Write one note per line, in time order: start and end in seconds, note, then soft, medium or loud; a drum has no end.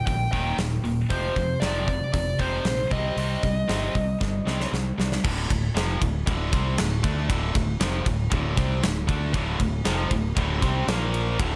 0.06 0.26 A#1 medium
0.06 0.30 D#2 medium
0.06 0.30 A#2 medium
0.06 0.31 G5 medium
0.06 kick medium
0.06 open hi-hat medium
0.32 0.52 D#1 medium
0.32 0.56 D#2 medium
0.32 0.57 A#2 medium
0.32 0.57 D#3 medium
0.32 0.56 G5 medium
0.32 kick medium
0.32 open hi-hat soft
0.57 0.77 D#1 medium
0.57 0.81 D#2 medium
0.57 0.82 A#2 medium
0.57 snare medium
0.57 open hi-hat medium
0.84 1.03 D#1 medium
0.84 1.07 D#2 medium
0.84 1.07 A#2 medium
0.84 open hi-hat soft
1.09 1.29 F1 medium
1.09 1.34 F2 medium
1.09 1.34 C3 medium
1.09 1.35 F3 medium
1.09 1.63 C5 medium
1.09 kick loud
1.09 open hi-hat medium
1.36 1.59 F2 medium
1.36 1.55 F2 medium
1.36 1.59 C3 medium
1.36 kick medium
1.36 open hi-hat soft
1.60 2.00 F1 medium
1.60 1.86 F2 medium
1.60 1.86 C3 medium
1.60 1.87 F3 medium
1.60 1.86 D5 medium
1.60 snare medium
1.60 open hi-hat medium
1.87 2.11 F2 medium
1.87 2.11 C3 medium
1.87 2.12 D5 medium
1.87 kick medium
1.87 open hi-hat soft
2.13 2.33 F1 medium
2.13 2.37 F2 medium
2.13 2.37 C3 medium
2.13 2.40 D5 medium
2.13 kick loud
2.13 open hi-hat medium
2.39 2.58 F1 medium
2.39 2.63 F2 medium
2.39 2.64 C3 medium
2.39 2.64 F3 medium
2.39 2.92 C5 medium
2.39 kick medium
2.39 open hi-hat soft
2.65 2.84 A#1 medium
2.65 2.88 F2 medium
2.65 2.89 C3 medium
2.65 snare medium
2.65 open hi-hat medium
2.90 3.10 C2 medium
2.90 3.15 C3 medium
2.90 3.15 G3 medium
2.90 3.16 C4 medium
2.90 4.68 D#5 medium
2.90 kick medium
2.90 open hi-hat soft
3.17 3.36 C2 medium
3.17 3.41 C3 medium
3.17 3.41 G3 medium
3.17 3.42 C4 medium
3.17 open hi-hat medium
3.43 3.62 C2 medium
3.43 3.66 C3 medium
3.43 3.66 G3 medium
3.43 kick medium
3.43 open hi-hat soft
3.68 3.88 G1 medium
3.68 3.92 C3 medium
3.68 3.93 G3 medium
3.68 3.93 C4 medium
3.68 snare loud
3.68 open hi-hat medium
3.94 4.14 C2 medium
3.94 4.18 C3 medium
3.94 4.18 G3 medium
3.94 kick medium
3.94 open hi-hat soft
4.20 4.40 G1 medium
4.20 4.44 C3 medium
4.20 4.44 G3 medium
4.20 kick medium
4.20 snare medium
4.47 4.66 C2 medium
4.47 4.71 C3 medium
4.47 4.71 G3 medium
4.47 4.71 C4 medium
4.47 snare medium
4.60 snare medium
4.72 4.91 C2 medium
4.72 4.95 C3 medium
4.72 4.95 G3 medium
4.72 snare medium
4.98 5.17 C2 medium
4.98 5.21 C3 medium
4.98 5.21 G3 medium
4.98 snare medium
5.12 snare medium
5.24 5.48 D1 medium
5.24 5.48 D2 medium
5.24 5.49 A2 medium
5.24 5.49 D3 loud
5.24 kick loud
5.24 crash loud
5.49 5.74 D1 medium
5.49 5.70 D2 medium
5.49 5.70 A2 medium
5.49 kick medium
5.49 ride medium
5.75 5.99 F1 medium
5.75 6.00 F2 medium
5.75 6.00 C3 medium
5.75 6.00 F3 loud
5.75 snare loud
5.75 ride loud
6.00 6.25 D1 medium
6.00 6.21 D2 medium
6.00 6.21 A2 medium
6.00 kick medium
6.00 ride medium
6.26 6.51 D1 loud
6.26 6.51 D2 loud
6.26 6.51 A2 medium
6.26 6.52 D3 loud
6.26 kick loud
6.26 ride loud
6.52 6.76 C2 medium
6.52 6.77 C3 loud
6.52 6.77 G3 medium
6.52 6.77 C4 loud
6.52 kick loud
6.52 ride medium
6.77 7.02 D1 medium
6.77 6.98 D2 medium
6.77 6.98 A2 medium
6.77 snare loud
6.77 ride loud
7.03 7.28 D2 loud
7.03 7.28 D3 medium
7.03 7.28 A3 loud
7.03 7.29 D4 loud
7.03 kick loud
7.03 ride medium
7.28 7.53 D1 loud
7.28 7.53 D2 medium
7.28 7.53 A2 loud
7.28 7.54 D3 loud
7.28 kick loud
7.28 ride loud
7.54 7.79 D1 medium
7.54 7.75 D2 medium
7.54 7.75 A2 medium
7.54 kick loud
7.54 ride medium
7.80 8.04 F1 medium
7.80 8.05 F2 medium
7.80 8.05 C3 loud
7.80 8.06 F3 loud
7.80 snare loud
7.80 ride loud
8.05 8.30 D1 medium
8.05 8.26 D2 medium
8.05 8.26 A2 medium
8.05 kick medium
8.05 ride medium
8.30 8.56 D1 loud
8.30 8.56 D2 medium
8.30 8.56 A2 loud
8.30 8.56 D3 loud
8.30 kick loud
8.30 ride loud
8.57 8.81 C2 loud
8.57 8.81 C3 medium
8.57 8.82 G3 loud
8.57 8.82 C4 loud
8.57 kick loud
8.57 ride medium
8.82 9.07 D1 medium
8.82 9.03 D2 medium
8.82 9.03 A2 medium
8.82 snare loud
8.82 ride medium
9.07 9.32 D2 loud
9.07 9.33 D3 loud
9.07 9.33 A3 loud
9.07 9.33 D4 loud
9.07 kick loud
9.07 ride medium
9.34 9.58 D1 loud
9.34 9.58 D2 medium
9.34 9.58 A2 loud
9.34 9.59 D3 loud
9.34 kick loud
9.34 ride loud
9.59 9.84 D1 medium
9.59 9.80 D2 medium
9.59 9.80 A2 medium
9.59 kick medium
9.59 ride medium
9.85 10.09 F1 medium
9.85 10.10 F2 medium
9.85 10.10 C3 loud
9.85 10.11 F3 loud
9.85 snare loud
9.85 ride loud
10.11 10.35 D1 medium
10.11 10.32 D2 medium
10.11 10.32 A2 medium
10.11 kick medium
10.11 ride medium
10.36 10.61 D1 medium
10.36 10.62 D2 medium
10.36 10.62 A2 loud
10.36 10.62 D3 loud
10.36 kick loud
10.36 ride loud
10.62 10.86 C2 loud
10.62 10.87 C3 medium
10.62 10.87 G3 loud
10.62 10.88 C4 loud
10.62 kick loud
10.62 ride medium
10.87 11.36 A#1 medium
10.87 11.38 A#2 medium
10.87 11.39 F3 loud
10.87 11.39 A#3 loud
10.87 snare loud
10.87 ride loud
11.14 ride medium
11.39 11.56 D1 loud
11.39 11.56 D2 loud
11.39 11.56 A2 loud
11.39 11.56 D3 loud
11.39 kick loud
11.39 ride loud